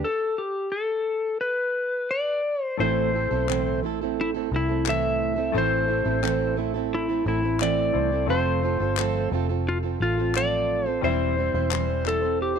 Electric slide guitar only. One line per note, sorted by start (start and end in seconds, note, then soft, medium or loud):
0.04 0.40 A4 medium
0.38 0.74 G4 medium
0.72 1.40 A4 medium
1.41 2.41 B4 medium
2.11 2.64 D5 loud
2.64 2.80 C5 loud
2.80 3.79 C5 loud
4.21 4.30 E4 medium
4.56 4.89 E4 medium
4.89 5.58 E5 loud
5.58 6.55 C5 loud
6.95 7.27 E4 medium
7.28 7.62 E4 medium
7.62 8.30 D5 loud
8.30 9.28 C5 loud
9.69 9.77 F4 medium
10.02 10.36 F4 medium
10.37 10.89 D5 loud
10.89 11.04 C5 loud
11.04 12.09 C5 loud
12.08 12.38 A4 medium
12.42 12.59 G4 medium